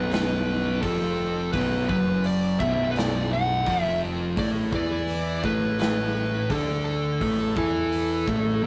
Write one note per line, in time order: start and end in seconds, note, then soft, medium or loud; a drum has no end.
0.00 0.79 B0 medium
0.00 0.82 B1 medium
0.00 0.83 B2 loud
0.11 0.82 B4 medium
0.11 snare loud
0.11 open hi-hat medium
0.82 1.50 F1 medium
0.82 1.53 F2 medium
0.82 1.53 F3 medium
0.82 1.52 A4 medium
0.82 kick medium
0.82 open hi-hat medium
1.53 1.87 B0 medium
1.53 1.88 B1 medium
1.53 1.89 B2 loud
1.53 1.88 B4 medium
1.53 kick loud
1.53 open hi-hat medium
1.88 2.56 F#1 loud
1.88 2.59 F#2 medium
1.88 2.59 F#3 loud
1.88 2.26 B4 medium
1.88 kick loud
2.24 2.60 D5 medium
2.24 open hi-hat medium
2.60 3.63 B0 medium
2.60 3.66 B1 medium
2.60 3.67 B2 medium
2.60 2.90 E5 medium
2.60 kick loud
2.91 2.97 B4 medium
2.96 3.30 D5 medium
2.96 snare loud
2.96 open hi-hat medium
3.33 3.82 F#5 medium
3.66 4.34 F1 medium
3.66 4.36 F2 medium
3.66 4.37 F3 loud
3.66 kick loud
3.66 open hi-hat medium
3.82 3.99 E5 medium
4.37 4.71 A1 medium
4.37 4.72 A2 loud
4.37 4.72 A3 loud
4.37 4.48 D5 loud
4.37 kick loud
4.37 open hi-hat medium
4.72 5.40 E2 loud
4.72 5.43 E3 loud
4.72 5.43 E4 loud
4.72 5.47 D5 loud
4.72 kick loud
5.08 open hi-hat medium
5.43 6.46 A1 medium
5.43 6.49 A2 medium
5.43 6.49 A3 loud
5.43 5.79 B4 medium
5.43 kick loud
5.79 6.51 B4 medium
5.79 snare loud
5.79 open hi-hat medium
6.50 7.17 D2 medium
6.50 7.20 D3 medium
6.50 7.20 D4 loud
6.50 6.84 A4 medium
6.50 kick loud
6.50 open hi-hat medium
6.85 8.67 A4 medium
7.21 7.54 A1 loud
7.21 7.56 A2 medium
7.21 7.55 A3 loud
7.21 kick loud
7.21 open hi-hat medium
7.56 8.24 E2 loud
7.56 8.26 E3 loud
7.56 8.27 E4 loud
7.56 kick loud
7.92 open hi-hat medium
8.27 8.61 A1 medium
8.27 8.62 A2 medium
8.27 8.63 A3 loud
8.27 kick loud
8.63 8.67 A1 medium
8.63 8.67 A2 medium
8.63 8.67 A3 loud